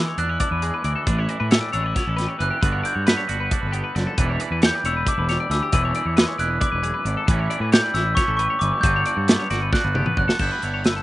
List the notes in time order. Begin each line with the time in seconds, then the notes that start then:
Already playing: E2 E3 G#3 E4 E6
0.06 C#5
0.17 E2 D4 D5 F#6, closed hi-hat
0.29 E4 B4
0.40 D4 D5 D6, kick, closed hi-hat
0.51 E2 B4
0.62 G#3 G#4, closed hi-hat
0.74 B4
0.84 D2 E3 D5, closed hi-hat
0.96 A4
1.06 A1 A2 D4 B4, kick, closed hi-hat
1.19 E4 C#5
1.29 E3 D5, closed hi-hat
1.40 A2 B4
1.51 G3 C#5 E6, snare, closed hi-hat
1.61 D5
1.73 A1 D4 C#5 E6, closed hi-hat
1.84 E4 B4
1.95 B3 C#5, kick, snare, closed hi-hat
2.06 A1 C#4 A4
2.17 G3 B4, snare, closed hi-hat
2.28 C#5
2.39 F#1 E3 B4 F#6, closed hi-hat
2.50 G4
2.61 G1 G2 D3 B3 D4 B4, kick, closed hi-hat
2.66 F#4
2.73 C#5
2.84 D3 D5 G6, closed hi-hat
2.95 G2 C#5
3.07 B3 B4 B6, snare, closed hi-hat
3.17 C#5
3.28 G1 F#4 D5, closed hi-hat
3.40 B4
3.51 D4 D5, kick, closed hi-hat
3.61 G1 B4
3.72 B3 G4, closed hi-hat
3.84 B4
3.95 F#1 D3 D5, snare, closed hi-hat
4.07 A4
4.18 E1 E2 E3 G3 D4 E4 B4, kick, closed hi-hat
4.29 C#5
4.40 E3 D5, closed hi-hat
4.51 E2 B4
4.62 G3 C#5 G6, snare, closed hi-hat
4.75 D5
4.84 E1 E4 C#5 E6, closed hi-hat
4.97 B4
5.07 D4 D5 D6, kick, closed hi-hat
5.18 E1 B4
5.29 G3 C#5, snare, closed hi-hat
5.40 D5
5.50 D2 E3 B4 E6, snare, closed hi-hat
5.63 G4
5.72 E1 E2 E3 G#3 D4 E4 B4 E6, kick, closed hi-hat
5.85 C#5
5.95 E3 D5, closed hi-hat
6.05 E2 C#5
6.17 G#3 B4, snare, closed hi-hat
6.28 C#5
6.38 E1 E4 D5 F#6, closed hi-hat
6.50 B4
6.61 E2 D5 D6, kick, closed hi-hat
6.72 E1 B4
6.83 F#2 G#4, closed hi-hat
6.94 B4
7.05 G#1 G#2 D5, closed hi-hat
7.17 A4
7.27 A1 A2 E3 G3 C#4 E4 B4, kick, closed hi-hat
7.39 C#5
7.50 E3 D5, closed hi-hat
7.60 A2 B4
7.72 G3 C#5 G6, snare, closed hi-hat
7.83 D5
7.94 A1 E4 C#5 E6, snare, closed hi-hat
8.06 B4
8.15 C#4 C#5 C#6, kick, snare, closed hi-hat
8.28 A1 A4
8.37 B4 C#6, closed hi-hat
8.41 G3
8.50 C#5
8.59 G1 E3 B4 D6, closed hi-hat
8.73 G4
8.81 G1 G2 D3 B3 D4 B4 G6, kick, closed hi-hat
8.86 F#4
8.96 C#5
9.05 D3 D5, closed hi-hat
9.17 G2 C#5
9.28 B3 B4, snare, closed hi-hat
9.40 C#5
9.50 G1 F#4 D5, snare, closed hi-hat
9.62 B4
9.73 D4 D5 F#6, kick, snare
9.84 G1 B4
9.95 B3 G4, mid tom
10.06 B4, mid tom
10.17 F#1 D3 D5 F#6, kick
10.28 A4, snare
10.39 G1 G2 D3 B3 D4 E4 A4 G6, kick, crash
10.51 B4
10.62 G1 E4 C#5, closed hi-hat
10.74 C#5
10.84 D3 B4 E6, snare, closed hi-hat
10.96 A4